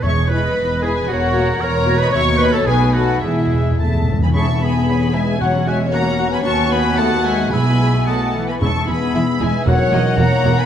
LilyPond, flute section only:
\new Staff \with { instrumentName = "Flute section" } { \time 2/4 \key e \major \tempo 4 = 113 e''8 dis''4 b'8 | ais'4 cis''8. dis''16 | e''8 dis''16 cis''16 b'8 a'8 | gis'4 e''8. gis''16 |
a''8 gis''4 e''8 | cis''8 e''8 fis''8. gis''16 | a''8 gis''8 fis''8 e''8 | gis''4 fis''8. gis''16 |
a''8 gis''4 e''8 | cis''4 fis''8. gis''16 | }